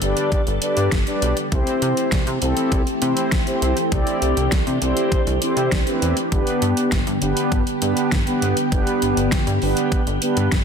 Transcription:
Already playing: string machine D3 G3 B3 A4
0.02 analog synth bass G1, analog polysynth D4 G4 B4 D5, closed hi-hat
0.17 closed hi-hat
0.32 kick, closed hi-hat
0.47 analog synth bass G1, closed hi-hat
0.62 analog polysynth D4 G4 B4 D5, closed hi-hat
0.77 analog synth bass G2, closed hi-hat
0.92 analog synth bass G1, kick, snare, closed hi-hat
1.07 analog polysynth D4 G4 B4 D5, closed hi-hat
1.22 analog synth bass B1, closed hi-hat
1.37 closed hi-hat
1.52 analog synth bass C2, string machine E3 A3 C4 G4, analog polysynth C4 E4 G4 C5, kick, closed hi-hat
1.67 closed hi-hat
1.82 analog synth bass C3, closed hi-hat
1.97 closed hi-hat
2.12 analog synth bass C2, kick, snare, closed hi-hat
2.27 analog synth bass C3, closed hi-hat
2.42 analog synth bass C2, analog polysynth C4 E4 G4 A4, closed hi-hat
2.57 closed hi-hat
2.72 analog synth bass C2, kick, closed hi-hat
2.87 closed hi-hat
3.02 analog synth bass C3, analog polysynth C4 E4 G4 C5, closed hi-hat
3.17 closed hi-hat
3.32 analog synth bass C2, kick, snare, closed hi-hat
3.47 analog polysynth C4 E4 G4 C5, closed hi-hat
3.62 analog synth bass C2, closed hi-hat
3.77 closed hi-hat
3.92 analog synth bass C2, analog polysynth C4 E4 G4 D5, string machine D4, kick, closed hi-hat
4.07 closed hi-hat
4.22 analog synth bass C2, closed hi-hat
4.37 analog synth bass C2, closed hi-hat
4.52 analog synth bass C2, kick, snare, closed hi-hat
4.67 analog synth bass C3, closed hi-hat
4.82 analog synth bass C2, analog polysynth C4 E4 G4 C5, closed hi-hat
4.97 closed hi-hat
5.12 kick, closed hi-hat
5.27 analog synth bass C2, closed hi-hat
5.42 analog polysynth C4 E4 G4 C5, closed hi-hat
5.57 analog synth bass C3, closed hi-hat
5.72 analog synth bass C2, kick, snare, closed hi-hat
5.87 analog polysynth C4 E4 G4 B4, closed hi-hat
6.02 analog synth bass E2, closed hi-hat
6.17 closed hi-hat
6.32 analog synth bass G1, string machine D3 G3 B3 G4, analog polysynth B3 D4 G4 B4, kick, closed hi-hat
6.47 closed hi-hat
6.62 analog synth bass G2, closed hi-hat
6.77 closed hi-hat
6.92 analog synth bass G1, kick, snare, closed hi-hat
7.07 analog synth bass G2, closed hi-hat
7.22 analog synth bass G1, analog polysynth B3 D4 G4 B4, closed hi-hat
7.37 closed hi-hat
7.52 analog synth bass G1, kick, closed hi-hat
7.67 closed hi-hat
7.82 analog synth bass G2, analog polysynth B3 D4 G4 B4, closed hi-hat
7.97 closed hi-hat
8.12 analog synth bass G1, kick, snare, closed hi-hat
8.27 analog polysynth B3 D4 G4 B4, closed hi-hat
8.42 analog synth bass G1, closed hi-hat
8.57 closed hi-hat
8.72 analog synth bass G1, analog polysynth B3 D4 G4 B4, kick, closed hi-hat
8.87 closed hi-hat
9.02 analog synth bass G1, closed hi-hat
9.17 analog synth bass G1, closed hi-hat
9.32 analog synth bass G1, kick, snare, closed hi-hat
9.47 analog synth bass G2, closed hi-hat
9.62 analog synth bass G1, analog polysynth B3 D4 G4 B4, open hi-hat
9.77 closed hi-hat
9.92 kick, closed hi-hat
10.07 analog synth bass G1, closed hi-hat
10.22 analog polysynth B3 D4 G4 B4, closed hi-hat
10.37 analog synth bass G2, closed hi-hat
10.52 analog synth bass G1, kick, snare, closed hi-hat

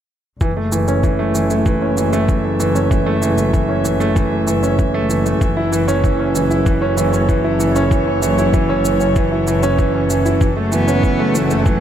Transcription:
0.41 double bass section F#1, grand piano E3, string section F#3, kick, shaker
0.57 grand piano A3
0.65 string section F#4
0.72 grand piano E3, shaker
0.88 grand piano C#4, string section E5, shaker
1.03 grand piano E3, kick, shaker
1.11 string section A4
1.19 grand piano A3
1.35 grand piano E3, shaker
1.50 grand piano A3, shaker
1.66 grand piano E3, kick, shaker
1.82 grand piano C#4
1.97 grand piano E3, shaker
2.13 grand piano A3, shaker
2.28 grand piano E3, kick, shaker
2.44 grand piano A3
2.60 grand piano E3, shaker
2.75 grand piano C#4, shaker
2.91 grand piano E3, kick, shaker
3.06 grand piano A3
3.22 grand piano E3, shaker
3.37 grand piano A3, shaker
3.53 grand piano E3, kick, shaker
3.69 grand piano C#4
3.85 grand piano E3, shaker
4.00 grand piano A3, shaker
4.16 grand piano E3, kick, shaker
4.32 grand piano A3
4.47 grand piano E3, shaker
4.63 grand piano C#4, shaker
4.79 grand piano E3, kick, shaker
4.94 grand piano A3
5.10 grand piano E3, shaker
5.26 grand piano A3, shaker
5.41 double bass section F#1, grand piano E3, kick, shaker
5.57 grand piano E4
5.72 grand piano E3, shaker
5.88 grand piano C#4, shaker
6.04 grand piano E3, kick, shaker
6.19 grand piano C#4
6.35 grand piano E3, shaker
6.45 string section C#5
6.51 grand piano E4, shaker
6.66 grand piano E3, kick, shaker
6.82 grand piano C#4
6.97 grand piano E3, shaker
7.13 grand piano C#4, shaker
7.29 grand piano E3, kick, shaker
7.44 grand piano E4
7.60 grand piano E3, shaker
7.76 grand piano C#4, shaker
7.91 grand piano E3, kick, shaker
8.07 grand piano C#4
8.22 grand piano E3, shaker
8.38 grand piano E4, shaker
8.54 grand piano E3, kick, shaker
8.69 grand piano C#4
8.85 grand piano E3, shaker
9.00 grand piano C#4, shaker
9.16 grand piano E3, kick, shaker
9.32 grand piano E4
9.47 grand piano E3, shaker
9.63 grand piano C#4, shaker
9.78 grand piano E3, kick, shaker
9.94 grand piano C#4
10.10 grand piano E3, shaker
10.26 grand piano E4, shaker
10.41 double bass section F#1, grand piano E3, kick, shaker
10.57 grand piano A3
10.72 grand piano E3, cello B3, shaker
10.88 grand piano C#4, shaker
11.03 grand piano E3, kick, shaker
11.19 grand piano A3, string section F#5
11.35 grand piano E3, cello A3, shaker
11.50 grand piano A3, shaker
11.66 grand piano E3, cello F#3, kick, shaker

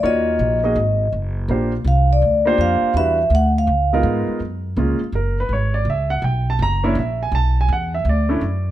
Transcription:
0.03 upright bass D#2, grand piano A#3 D#4 F4 F#4 C#5, vibraphone D#5
0.39 upright bass A#1
0.64 grand piano A#3 D#4 F#4 G#4 D#5
0.75 upright bass G#1
1.12 upright bass F#1
1.48 upright bass A#1, grand piano A#3 D4 F4 G4 C5
1.84 upright bass C2, vibraphone F5
2.13 vibraphone D5
2.22 upright bass D2
2.45 grand piano A#3 D4 F4 G4 C5
2.58 upright bass F2, vibraphone F5
2.82 muted upright bass stroke
2.94 upright bass E2, grand piano G3 D4 E4 F#4 B4, vibraphone E5
3.30 upright bass D2
3.35 vibraphone F#5
3.58 vibraphone F5
3.67 upright bass C#2
3.93 grand piano G#3 B3 D#4 F4 A#4
4.03 upright bass G#2
4.28 muted upright bass stroke
4.40 upright bass F#2
4.76 upright bass C#2, grand piano G#3 A#3 C#4 F4
5.00 muted upright bass stroke
5.12 upright bass F#1, grand piano A#4
5.40 grand piano B4
5.49 upright bass G#1
5.53 grand piano C#5
5.74 grand piano D5
5.85 upright bass C#2
5.90 grand piano E5
6.10 grand piano F#5
6.22 upright bass B1, grand piano G5
6.50 grand piano A5
6.59 upright bass F#1, grand piano A#5
6.84 grand piano A#3 C#4 D4 E4 C#5
6.95 upright bass A#1, grand piano E5
7.23 grand piano G#5
7.32 upright bass B1, grand piano A5
7.61 grand piano G#5
7.68 upright bass E2
7.73 grand piano F#5
7.94 grand piano E5
8.05 upright bass D2
8.09 grand piano D5
8.29 grand piano A3 C#4 D4 E4
8.41 upright bass F#2

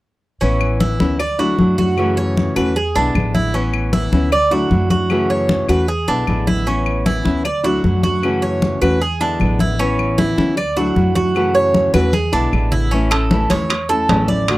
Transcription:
0.41 upright bass A1, nylon-string guitar E3 B3 C#4 E4, cuban tres C#4, high conga
0.61 high conga, claves
0.80 cuban tres E4, high conga
1.00 upright bass D2, nylon-string guitar B3 C#4 E4, high conga
1.19 cuban tres D5, muted nylon-string guitar stroke, high conga, claves
1.39 nylon-string guitar F#3 A3 D4 E4, cuban tres F#4, high conga
1.59 upright bass F#2, nylon-string guitar F#3 A3 D4 E4, high conga
1.78 cuban tres F#4, high conga
1.97 nylon-string guitar C#3 E3 A3 C#4 F#4, high conga, claves
2.17 cuban tres C#5, high conga
2.37 high conga
2.56 upright bass E2, nylon-string guitar E3 A3 C#4 F#4, cuban tres B4, high conga, claves
2.76 cuban tres G#4, muted nylon-string guitar stroke, high conga
2.95 upright bass B1, nylon-string guitar D3 G#3 B3 E4, cuban tres D4, high conga
3.14 upright bass A1, nylon-string guitar D3 G#3 B3 E4, high conga, claves
3.35 cuban tres E4, high conga
3.54 nylon-string guitar E3 B3 C#4 E4, cuban tres C#4, high conga
3.73 high conga, claves
3.93 cuban tres E4, high conga
4.12 upright bass D2, nylon-string guitar B3 C#4 E4, high conga
4.32 cuban tres D5, muted nylon-string guitar stroke, high conga, claves
4.51 nylon-string guitar F#3 A3 D4 E4, cuban tres F#4, high conga
4.71 upright bass F#2, nylon-string guitar F#3 A3 D4 E4, high conga
4.90 cuban tres F#4, high conga
5.10 nylon-string guitar C#3 E3 A3 C#4 F#4, high conga, claves
5.30 cuban tres C#5, high conga
5.49 high conga
5.69 upright bass E2, nylon-string guitar E3 A3 C#4 F#4, cuban tres B4, high conga, claves
5.88 cuban tres G#4, muted nylon-string guitar stroke, high conga
6.08 upright bass B1, nylon-string guitar D3 G#3 B3 E4, cuban tres D4, high conga
6.27 upright bass A1, nylon-string guitar D3 G#3 B3 E4, high conga, claves
6.47 cuban tres E4, high conga
6.66 nylon-string guitar E3 B3 C#4 E4, cuban tres C#4, high conga
6.86 high conga, claves
7.06 cuban tres E4, high conga
7.25 upright bass D2, nylon-string guitar B3 C#4 E4, high conga
7.45 cuban tres D5, muted nylon-string guitar stroke, high conga, claves
7.64 nylon-string guitar F#3 A3 D4 E4, cuban tres F#4, high conga
7.84 upright bass F#2, nylon-string guitar F#3 A3 D4 E4, high conga
8.03 cuban tres F#4, high conga
8.23 nylon-string guitar C#3 E3 A3 C#4 F#4, high conga, claves
8.42 cuban tres C#5, high conga
8.62 high conga
8.82 upright bass E2, nylon-string guitar E3 A3 C#4 F#4, cuban tres B4, high conga, claves
9.01 cuban tres G#4, muted nylon-string guitar stroke, high conga
9.21 nylon-string guitar D3 G#3 B3 E4, cuban tres D4, high conga
9.40 upright bass A1, nylon-string guitar D3 G#3 B3 E4, high conga, claves
9.59 cuban tres E4, high conga
9.79 nylon-string guitar E3 B3 C#4 E4, cuban tres C#4, high conga
9.99 high conga, claves
10.18 cuban tres E4, high conga
10.38 upright bass D2, nylon-string guitar B3 C#4 E4, high conga
10.57 cuban tres D5, muted nylon-string guitar stroke, high conga, claves
10.77 nylon-string guitar F#3 A3 D4 E4, cuban tres F#4, high conga
10.96 upright bass F#2, nylon-string guitar F#3 A3 D4 E4, high conga
11.15 cuban tres F#4, high conga
11.35 nylon-string guitar C#3 E3 A3 C#4 F#4, high conga, claves
11.55 cuban tres C#5, high conga
11.74 high conga
11.94 upright bass E2, nylon-string guitar E3 A3 C#4 F#4, cuban tres B4, high conga, claves
12.13 cuban tres G#4, muted nylon-string guitar stroke, high conga
12.32 upright bass B1, nylon-string guitar D3 G#3 B3 E4, cuban tres D4
12.52 upright bass A1, nylon-string guitar D3 G#3 B3 E4, claves
12.72 cuban tres E4, low conga
12.91 nylon-string guitar E3 A3 C#4 E4, cuban tres C#4, high conga
13.11 nylon-string guitar A3 C#4 E4, cuban tres A4, high conga, high timbale, claves
13.31 nylon-string guitar E3 A3 C#4 E4, high conga, low timbale
13.50 upright bass E2, cuban tres C#5, high conga, high timbale
13.70 muted nylon-string guitar stroke, high conga, high timbale, claves
13.89 nylon-string guitar A3 C#4 E4, cuban tres A4, high conga
14.09 upright bass A1, nylon-string guitar E3 A3 C#4 E4, high conga, high timbale, low timbale
14.28 nylon-string guitar A3 C#4 E4, cuban tres D5, high conga
14.48 nylon-string guitar D3 A3 D4 F#4, high conga, high timbale, claves

